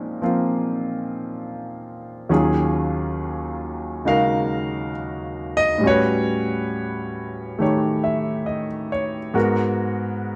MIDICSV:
0, 0, Header, 1, 2, 480
1, 0, Start_track
1, 0, Key_signature, -6, "minor"
1, 0, Tempo, 884956
1, 1240, Time_signature, 4, 2, 24, 8
1, 5618, End_track
2, 0, Start_track
2, 0, Title_t, "Grand piano"
2, 0, Program_c, 0, 0
2, 0, Control_c, 0, 64, 127
2, 0, Note_on_c, 0, 46, 37
2, 0, Note_on_c, 0, 53, 31
2, 0, Note_on_c, 0, 60, 33
2, 0, Note_on_c, 0, 61, 34
2, 0, Note_on_c, 0, 63, 33
2, 0, Note_on_c, 0, 68, 37
2, 109, Note_off_c, 0, 53, 0
2, 117, Note_on_c, 0, 53, 34
2, 118, Note_off_c, 0, 60, 0
2, 123, Note_on_c, 0, 58, 28
2, 127, Note_on_c, 0, 60, 29
2, 130, Note_on_c, 0, 65, 39
2, 1230, Note_off_c, 0, 46, 0
2, 1243, Note_off_c, 0, 53, 0
2, 1243, Note_off_c, 0, 61, 0
2, 1244, Note_on_c, 0, 39, 40
2, 1245, Note_on_c, 0, 51, 39
2, 1246, Note_off_c, 0, 58, 0
2, 1246, Note_off_c, 0, 65, 0
2, 1247, Note_off_c, 0, 60, 0
2, 1247, Note_on_c, 0, 54, 40
2, 1248, Note_off_c, 0, 68, 0
2, 1248, Control_c, 0, 64, 0
2, 1251, Note_on_c, 0, 61, 41
2, 1254, Note_on_c, 0, 65, 42
2, 1255, Note_off_c, 0, 63, 0
2, 1256, Note_on_c, 0, 68, 44
2, 1359, Control_c, 0, 64, 127
2, 2197, Note_on_c, 0, 49, 39
2, 2198, Note_on_c, 0, 56, 35
2, 2203, Note_on_c, 0, 63, 36
2, 2207, Note_on_c, 0, 66, 33
2, 2211, Note_on_c, 0, 77, 78
2, 2215, Note_on_c, 0, 70, 40
2, 2665, Note_off_c, 0, 77, 0
2, 3021, Note_on_c, 0, 75, 90
2, 3136, Note_on_c, 0, 45, 40
2, 3151, Note_on_c, 0, 55, 42
2, 3157, Note_off_c, 0, 61, 0
2, 3158, Note_off_c, 0, 49, 0
2, 3159, Note_off_c, 0, 56, 0
2, 3161, Note_off_c, 0, 63, 0
2, 3163, Note_off_c, 0, 39, 0
2, 3163, Note_off_c, 0, 66, 0
2, 3164, Note_off_c, 0, 51, 0
2, 3165, Note_off_c, 0, 54, 0
2, 3165, Note_on_c, 0, 61, 39
2, 3167, Note_off_c, 0, 70, 0
2, 3167, Control_c, 0, 64, 0
2, 3169, Note_off_c, 0, 65, 0
2, 3169, Note_off_c, 0, 68, 0
2, 3173, Note_off_c, 0, 75, 0
2, 3179, Note_on_c, 0, 66, 39
2, 3185, Note_on_c, 0, 73, 82
2, 3194, Note_on_c, 0, 71, 51
2, 3248, Control_c, 0, 64, 127
2, 4115, Note_on_c, 0, 57, 39
2, 4121, Note_on_c, 0, 51, 35
2, 4124, Note_off_c, 0, 73, 0
2, 4124, Note_on_c, 0, 67, 34
2, 4132, Note_on_c, 0, 73, 43
2, 4359, Note_on_c, 0, 76, 42
2, 4590, Note_on_c, 0, 75, 41
2, 4693, Note_off_c, 0, 76, 0
2, 4831, Note_off_c, 0, 73, 0
2, 4839, Note_on_c, 0, 73, 48
2, 4970, Note_off_c, 0, 75, 0
2, 5058, Note_off_c, 0, 45, 0
2, 5063, Note_off_c, 0, 66, 0
2, 5064, Note_on_c, 0, 44, 45
2, 5065, Note_off_c, 0, 55, 0
2, 5068, Note_on_c, 0, 56, 39
2, 5069, Note_off_c, 0, 57, 0
2, 5071, Note_on_c, 0, 59, 43
2, 5071, Note_on_c, 0, 66, 43
2, 5072, Note_off_c, 0, 51, 0
2, 5072, Note_off_c, 0, 61, 0
2, 5074, Note_off_c, 0, 67, 0
2, 5075, Note_on_c, 0, 70, 45
2, 5077, Control_c, 0, 64, 0
2, 5087, Note_off_c, 0, 71, 0
2, 5170, Control_c, 0, 64, 127
2, 5172, Note_off_c, 0, 73, 0
2, 5618, Note_off_c, 0, 44, 0
2, 5618, Note_off_c, 0, 56, 0
2, 5618, Note_off_c, 0, 59, 0
2, 5618, Note_off_c, 0, 66, 0
2, 5618, Note_off_c, 0, 70, 0
2, 5618, End_track
0, 0, End_of_file